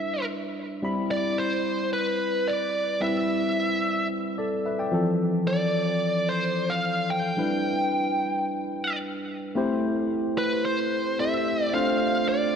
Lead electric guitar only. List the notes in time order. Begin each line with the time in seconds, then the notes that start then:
Already playing: E5
1.11 D5
1.38 C5
1.93 B4
2.48 D5
3.02 E5
5.47 D5
6.29 C5
6.70 F5
7.11 G5
10.38 B4
10.65 C5
11.20 E5
11.64 D5
11.74 F5
12.29 D5